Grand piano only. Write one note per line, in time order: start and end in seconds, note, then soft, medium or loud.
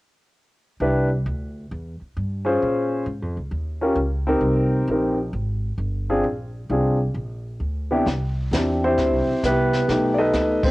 0.81 1.07 D4 medium
0.81 1.07 E4 soft
0.81 1.08 G4 soft
0.81 1.08 B4 medium
2.45 3.03 C#4 medium
2.45 3.03 F4 medium
2.45 3.04 G#4 medium
2.45 3.04 C5 medium
3.81 3.96 C#4 medium
3.81 3.96 F4 soft
3.81 3.96 G4 soft
3.81 3.96 A#4 medium
4.27 4.85 C4 medium
4.27 4.85 D#4 medium
4.27 4.86 G4 medium
4.27 4.86 A#4 medium
4.90 5.16 C4 soft
4.90 5.16 D#4 soft
4.90 5.16 G4 soft
4.90 5.16 A#4 medium
6.10 6.23 C4 medium
6.10 6.23 D4 medium
6.10 6.24 F4 medium
6.10 6.23 G#4 medium
6.70 6.97 C4 soft
6.70 6.97 D4 soft
6.70 6.97 F4 soft
6.70 6.97 G#4 medium
7.91 8.05 C3 medium
7.91 8.05 B3 medium
7.91 8.05 D4 medium
7.91 8.05 E4 medium
7.91 8.05 G4 medium
8.52 8.83 C4 soft
8.52 9.21 D4 soft
8.52 8.84 E4 soft
8.52 8.83 G4 soft
8.84 9.40 C4 medium
8.84 9.40 E4 medium
8.84 9.40 G4 medium
8.84 9.40 C5 medium
9.45 9.88 B3 medium
9.45 9.86 E4 medium
9.45 9.88 G4 medium
9.45 10.15 B4 medium
9.88 10.57 A3 medium
9.88 10.58 B3 soft
9.88 10.17 D#4 soft
9.88 10.58 G4 medium
10.14 10.16 D5 medium
10.18 10.71 D#4 medium
10.18 10.71 A4 medium
10.18 10.71 B4 medium
10.18 10.71 D#5 medium
10.64 10.71 C4 medium
10.64 10.71 C5 medium